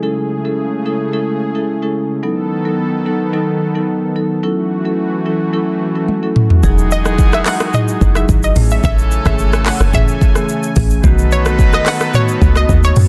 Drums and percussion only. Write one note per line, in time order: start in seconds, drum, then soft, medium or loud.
6.08 high tom medium
6.36 mid tom medium
6.50 floor tom medium
6.63 kick loud
6.63 shaker medium
6.78 shaker medium
6.91 shaker medium
7.05 cross-stick medium
7.05 shaker medium
7.19 kick medium
7.19 shaker medium
7.33 cross-stick loud
7.33 shaker medium
7.46 cross-stick medium
7.46 clap medium
7.46 open hi-hat medium
7.46 shaker medium
7.60 cross-stick loud
7.60 shaker medium
7.74 mid tom medium
7.74 shaker medium
7.88 shaker medium
8.01 kick medium
8.01 shaker soft
8.15 cross-stick medium
8.15 shaker medium
8.29 kick loud
8.29 shaker medium
8.43 shaker medium
8.56 mid tom loud
8.56 open hi-hat medium
8.56 shaker medium
8.70 shaker medium
8.84 kick loud
8.84 shaker medium
8.99 shaker medium
9.11 shaker medium
9.25 kick medium
9.25 cross-stick medium
9.25 shaker medium
9.39 shaker medium
9.53 cross-stick loud
9.53 shaker medium
9.66 cross-stick medium
9.66 clap medium
9.66 open hi-hat medium
9.66 shaker medium
9.80 cross-stick loud
9.80 shaker medium
9.94 kick medium
9.94 mid tom medium
9.94 shaker medium
10.08 shaker medium
10.21 kick medium
10.21 shaker soft
10.35 cross-stick medium
10.35 shaker medium
10.49 shaker medium
10.63 shaker medium
10.76 kick medium
10.76 mid tom loud
10.76 open hi-hat medium
10.76 shaker medium
10.90 shaker medium
11.04 kick loud
11.04 shaker medium
11.19 shaker medium
11.31 shaker medium
11.46 cross-stick loud
11.46 shaker medium
11.59 kick medium
11.59 shaker medium
11.73 cross-stick medium
11.73 shaker medium
11.86 cross-stick medium
11.86 clap medium
11.86 open hi-hat medium
11.86 shaker medium
12.01 cross-stick loud
12.01 shaker medium
12.14 mid tom loud
12.14 shaker medium
12.29 shaker medium
12.42 kick medium
12.42 shaker soft
12.56 cross-stick loud
12.56 shaker medium
12.69 kick loud
12.69 shaker medium
12.83 shaker medium
12.96 mid tom loud
12.96 open hi-hat medium
12.96 shaker medium